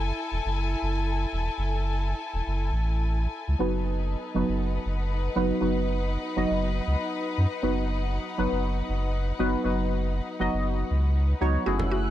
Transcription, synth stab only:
3.59 F#3 B3 D#4 F#4 B4
4.34 F#3 B3 D#4 F#4 B4
5.36 F#3 B3 D#4 F#4 B4
5.60 F#3 B3 D#4 F#4 B4
6.36 F#3 B3 D#4 F#4 D#5
7.62 F#3 B3 D#4 F#4 B4
8.38 F#3 B3 D#4 F#4 B4
9.39 F#3 B3 D#4 F#4 B4
9.64 F#3 B3 D#4 F#4 B4
10.39 F#3 B3 D#4 F#4 D#5
11.41 F#3 B3 D#4 F#4 C#5
11.66 A3 C#4 E4 F#4 G#4

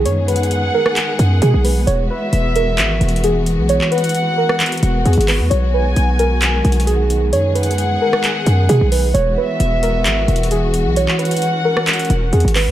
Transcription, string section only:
Already playing: D#3 G#3 B3
0.06 G#4
1.87 E3 F#4
5.51 D#3 G#3
7.33 G#4
9.15 E3 B3 F#4
10.96 C#4

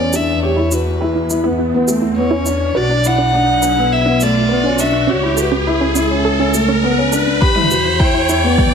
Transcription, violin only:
Already playing: D5
0.15 E5
0.44 C#5
0.73 B4
2.17 C#5
2.76 D5
3.07 F#5
3.92 E5
4.23 D5
4.80 E5
5.10 C#5
5.40 B4
7.42 B5
8.00 G5
8.59 G5

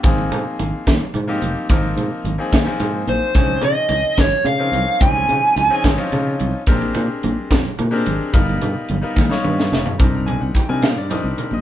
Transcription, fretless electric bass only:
0.04 G#1
0.31 G#2
0.60 G#1
0.87 D#2
1.01 muted fretless electric bass stroke
1.15 G#2
1.42 F1
1.70 G#1
1.97 G#2
2.24 G#1
2.53 D#2
2.66 muted fretless electric bass stroke
2.80 G#2
3.07 A#1
3.35 C#2
3.62 C#3
3.89 C#2
4.18 G#1
4.31 muted fretless electric bass stroke
4.45 C#3
4.72 C2
5.01 C#2
5.29 C#3
5.56 C#2
5.84 G#1
5.99 muted fretless electric bass stroke
6.12 C#3
6.40 C2
6.67 A#1
6.96 A#2
7.24 A#1
7.50 F2
7.66 muted fretless electric bass stroke
7.79 A#2
8.07 G#1
8.34 G1
8.62 G2
8.90 G1
9.17 D#2
9.31 muted fretless electric bass stroke
9.45 G2
9.72 F1
10.00 C2
10.42 C2
10.55 muted fretless electric bass stroke
10.69 C3
10.96 G2
11.24 C2
11.38 muted fretless electric bass stroke
11.52 A#1

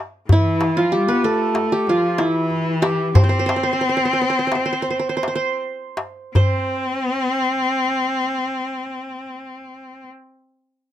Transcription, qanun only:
0.32 E4
0.77 F4
0.92 G4
1.08 B4
1.24 A4
1.72 G4
1.89 F4
2.18 E4
2.82 G4
3.15 C5
3.24 C5
3.29 C5
3.39 C5
3.46 C5
3.56 C5
3.63 C5
3.73 C5
3.81 C5
3.89 C5
3.97 C5
4.05 C5
4.13 C5
4.21 C5
4.30 C5
4.39 C5
4.47 C5
4.55 C5
4.66 C5
4.73 C5
4.82 C5
4.90 C5
4.99 C5
5.09 C5
5.17 C5
5.28 C5
5.35 C5
6.36 C5

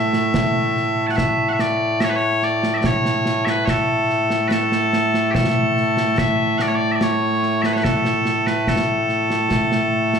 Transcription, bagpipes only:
Already playing: A2 A3 E5
1.07 F#5 A5
1.16 E5
1.49 E5 F#5
1.60 D5
2.00 C#5 E5
2.09 B4
2.16 C#5
2.44 D5
2.74 D5 E5
2.86 C#5
3.45 E5
3.49 B4
3.65 C#5
3.70 A4
4.48 B4
4.52 A4
5.31 G4 A4
6.18 E5
6.58 D5 F#5
6.68 C#5
6.75 D5
6.92 D5 E5
7.03 C#5
7.62 B4 E5
7.73 C#5
7.78 B4
7.84 A4
8.47 B4
8.68 A4

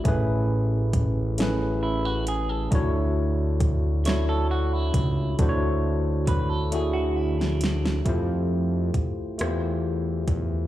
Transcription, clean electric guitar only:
1.83 E4
2.05 F#4
2.28 G#4
2.49 A4
4.06 C#5
4.29 A4
4.51 F#4
4.73 E4
6.28 B4
6.49 A4
6.72 G#4
6.93 F#4
7.16 E4
7.38 D4

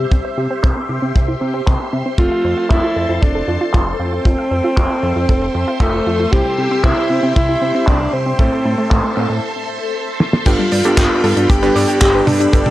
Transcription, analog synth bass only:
0.12 C2
0.37 C3
0.64 C2
0.89 C3
1.02 C3
1.16 C2
1.41 C3
1.67 C2
1.93 C3
2.18 F1
2.44 F2
2.71 F1
2.96 F2
3.09 F2
3.23 F1
3.48 F2
3.74 F1
4.00 F2
4.25 F1
4.51 F2
4.77 F1
5.03 F2
5.16 F2
5.29 F1
5.55 F2
5.80 F1
6.06 F2
6.33 C2
6.58 C3
6.84 C2
7.10 C3
7.23 C3
7.36 C2
7.62 C3
7.88 C2
8.13 C3
8.39 A1
8.65 A2
8.91 A1
9.17 A2
9.30 A2
10.46 G1
10.72 G2
10.97 G1
11.24 G2
11.37 G2
11.50 G1
11.75 G2
12.02 G1
12.27 G2
12.53 G1

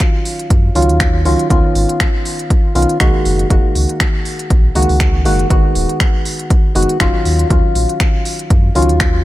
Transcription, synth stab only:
Already playing: D#3 F#3 C#4 F4
0.75 D#3 F#3 C#4 F4
1.25 D#3 F#3 C#4 F4
1.50 D#3 B3 C#4 F4
2.75 D#3 B3 C#4 F4
3.00 D#3 G#3 A#3 F#4
3.50 D#3 G#3 A#3 F#4
4.75 D#3 G#3 A#3 F#4
5.25 D#3 G#3 A#3 F#4
5.50 D#3 G#3 B3 F#4
6.75 D#3 G#3 B3 F#4
7.00 D#3 F#3 C#4 F4
7.50 D#3 F#3 C#4 F4
8.75 D#3 F#3 C#4 F4

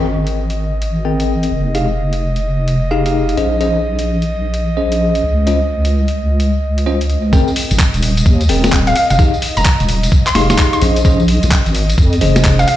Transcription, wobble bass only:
Already playing: G#1
1.51 F1
3.37 A#1
5.23 C#2
7.71 G#1
7.94 D#1
8.26 D#2
8.49 D#1
9.10 F1
9.57 F1
9.80 D#1
10.35 F1
10.50 D#1
10.82 A#1
11.43 A#1
11.66 G#1
11.98 F2
12.21 F1

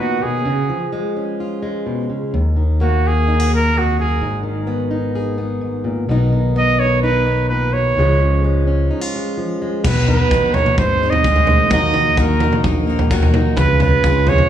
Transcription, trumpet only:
0.00 F#4
0.23 G#4
2.82 F#4
3.07 G#4
3.55 A#4
3.78 F#4
4.00 G#4
6.58 D#5
6.80 C#5
7.03 B4
7.49 B4
7.73 C#5
9.86 B4
10.09 B4
10.54 C#5
10.79 C5
11.10 D#5
11.73 D#5
12.20 A#4
13.57 B4
13.82 B4
14.29 C#5

